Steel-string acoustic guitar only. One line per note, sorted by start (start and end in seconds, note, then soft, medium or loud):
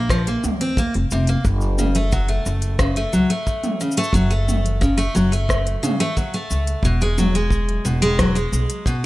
0.10 0.26 F3 medium
0.28 0.42 A#3 medium
0.61 0.77 C4 medium
0.78 0.93 A#3 medium
1.12 1.27 C3 medium
1.29 1.44 A#3 medium
1.79 1.95 C#3 medium
1.95 2.11 A3 medium
2.12 2.28 F#3 medium
2.29 2.78 A3 medium
2.79 2.95 C#3 medium
2.97 3.12 A3 medium
3.13 3.29 F#3 medium
3.30 3.79 A3 medium
3.81 3.97 C#3 medium
3.97 4.13 A3 loud
4.14 4.30 F#3 medium
4.30 4.80 A3 medium
4.81 4.97 C#3 medium
4.98 5.13 A3 medium
5.15 5.31 F#3 medium
5.32 5.81 A3 medium
5.83 5.99 C#3 medium
6.00 6.15 A3 loud
6.17 6.33 F#3 medium
6.34 6.83 A3 medium
6.85 7.01 B2 medium
7.02 7.17 G#3 loud
7.18 7.34 F#3 medium
7.35 7.84 G#3 medium
7.85 8.01 B2 medium
8.02 8.17 G#3 loud
8.19 8.35 F#3 medium
8.35 8.85 G#3 medium
8.87 9.03 B2 medium